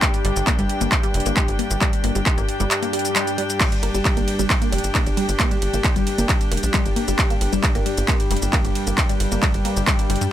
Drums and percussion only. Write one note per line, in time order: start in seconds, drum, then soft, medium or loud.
0.02 kick loud
0.02 clap loud
0.02 closed hi-hat medium
0.02 shaker medium
0.14 closed hi-hat medium
0.14 shaker soft
0.25 open hi-hat loud
0.36 closed hi-hat medium
0.36 shaker medium
0.47 kick loud
0.47 clap loud
0.47 closed hi-hat medium
0.47 shaker medium
0.59 closed hi-hat medium
0.59 shaker soft
0.69 open hi-hat medium
0.81 closed hi-hat medium
0.81 shaker medium
0.92 kick loud
0.92 clap loud
0.92 closed hi-hat medium
0.92 shaker medium
1.03 closed hi-hat medium
1.03 shaker soft
1.14 open hi-hat loud
1.20 closed hi-hat medium
1.26 closed hi-hat medium
1.26 shaker medium
1.37 kick loud
1.37 clap loud
1.37 closed hi-hat medium
1.37 shaker medium
1.48 closed hi-hat medium
1.48 shaker soft
1.59 open hi-hat medium
1.71 closed hi-hat medium
1.71 shaker medium
1.81 kick loud
1.81 clap loud
1.81 closed hi-hat medium
1.81 shaker medium
1.93 closed hi-hat medium
1.93 shaker soft
2.04 open hi-hat loud
2.15 closed hi-hat medium
2.15 shaker medium
2.26 kick loud
2.26 clap loud
2.26 closed hi-hat medium
2.26 shaker medium
2.38 closed hi-hat medium
2.38 shaker soft
2.49 open hi-hat medium
2.60 closed hi-hat medium
2.60 shaker medium
2.71 clap loud
2.71 closed hi-hat medium
2.71 shaker medium
2.83 closed hi-hat medium
2.83 shaker soft
2.93 open hi-hat loud
2.99 closed hi-hat medium
3.05 closed hi-hat medium
3.05 shaker medium
3.16 clap loud
3.16 closed hi-hat medium
3.16 shaker medium
3.27 closed hi-hat medium
3.27 shaker soft
3.38 open hi-hat medium
3.50 closed hi-hat medium
3.50 shaker medium
3.60 kick loud
3.60 clap loud
3.60 closed hi-hat medium
3.60 crash medium
3.60 ride medium
3.60 shaker medium
3.72 closed hi-hat medium
3.72 ride medium
3.72 shaker soft
3.83 open hi-hat loud
3.83 ride medium
3.95 closed hi-hat medium
3.95 ride medium
3.95 shaker medium
4.05 kick loud
4.05 clap loud
4.05 closed hi-hat medium
4.05 ride medium
4.05 shaker soft
4.17 closed hi-hat medium
4.17 ride medium
4.17 shaker soft
4.28 open hi-hat loud
4.28 ride medium
4.39 closed hi-hat medium
4.39 ride medium
4.39 shaker medium
4.50 kick loud
4.50 clap loud
4.50 closed hi-hat medium
4.50 ride medium
4.50 shaker medium
4.62 closed hi-hat medium
4.62 ride medium
4.62 shaker soft
4.73 open hi-hat loud
4.73 ride medium
4.78 closed hi-hat medium
4.84 closed hi-hat medium
4.84 ride medium
4.84 shaker medium
4.95 kick loud
4.95 clap loud
4.95 closed hi-hat medium
4.95 ride medium
4.95 shaker soft
5.06 closed hi-hat medium
5.06 ride medium
5.06 shaker soft
5.17 open hi-hat loud
5.17 ride medium
5.29 closed hi-hat medium
5.29 ride medium
5.29 shaker medium
5.40 kick loud
5.40 clap loud
5.40 closed hi-hat medium
5.40 ride medium
5.40 shaker medium
5.51 closed hi-hat medium
5.51 ride medium
5.51 shaker soft
5.62 open hi-hat loud
5.62 ride medium
5.74 closed hi-hat medium
5.74 ride medium
5.74 shaker medium
5.84 kick loud
5.84 clap loud
5.84 closed hi-hat medium
5.84 ride medium
5.84 shaker soft
5.96 closed hi-hat medium
5.96 ride medium
5.96 shaker soft
6.07 open hi-hat loud
6.07 ride medium
6.18 closed hi-hat medium
6.18 ride medium
6.18 shaker medium
6.29 kick loud
6.29 clap loud
6.29 closed hi-hat medium
6.29 ride medium
6.29 shaker medium
6.41 closed hi-hat medium
6.41 ride medium
6.41 shaker soft
6.52 open hi-hat loud
6.52 ride medium
6.57 closed hi-hat medium
6.63 closed hi-hat medium
6.63 ride medium
6.63 shaker medium
6.74 kick loud
6.74 clap loud
6.74 closed hi-hat medium
6.74 ride medium
6.74 shaker medium
6.86 closed hi-hat medium
6.86 ride medium
6.86 shaker soft
6.96 open hi-hat loud
6.96 ride medium
7.08 closed hi-hat medium
7.08 ride medium
7.08 shaker medium
7.19 kick loud
7.19 clap loud
7.19 closed hi-hat medium
7.19 ride medium
7.19 shaker medium
7.30 closed hi-hat medium
7.30 ride medium
7.30 shaker soft
7.41 open hi-hat loud
7.41 ride medium
7.53 closed hi-hat medium
7.53 ride medium
7.53 shaker medium
7.63 kick loud
7.63 clap loud
7.63 closed hi-hat medium
7.63 ride medium
7.63 shaker medium
7.75 closed hi-hat medium
7.75 ride medium
7.75 shaker soft
7.86 open hi-hat loud
7.86 ride medium
7.98 closed hi-hat medium
7.98 ride medium
7.98 shaker medium
8.08 kick loud
8.08 clap loud
8.08 closed hi-hat medium
8.08 ride medium
8.08 shaker medium
8.20 closed hi-hat medium
8.20 ride medium
8.20 shaker soft
8.31 open hi-hat loud
8.31 ride medium
8.36 closed hi-hat medium
8.42 closed hi-hat medium
8.42 ride medium
8.42 shaker medium
8.53 kick loud
8.53 clap loud
8.53 closed hi-hat medium
8.53 ride medium
8.53 shaker medium
8.65 closed hi-hat medium
8.65 ride medium
8.65 shaker soft
8.75 open hi-hat loud
8.75 ride medium
8.87 closed hi-hat medium
8.87 ride medium
8.87 shaker medium
8.98 kick loud
8.98 clap loud
8.98 closed hi-hat medium
8.98 ride medium
8.98 shaker medium
9.09 closed hi-hat medium
9.09 ride medium
9.09 shaker soft
9.20 open hi-hat loud
9.20 ride medium
9.32 closed hi-hat medium
9.32 ride medium
9.32 shaker medium
9.43 kick loud
9.43 clap loud
9.43 closed hi-hat medium
9.43 ride medium
9.43 shaker medium
9.54 closed hi-hat soft
9.54 ride medium
9.54 shaker soft
9.65 open hi-hat medium
9.65 ride medium
9.77 closed hi-hat medium
9.77 ride medium
9.77 shaker medium
9.87 kick loud
9.87 clap loud
9.87 closed hi-hat medium
9.87 ride medium
9.87 shaker medium
9.99 closed hi-hat medium
9.99 ride medium
9.99 shaker soft
10.10 open hi-hat loud
10.10 ride medium
10.16 closed hi-hat medium
10.21 closed hi-hat medium
10.21 ride medium
10.21 shaker medium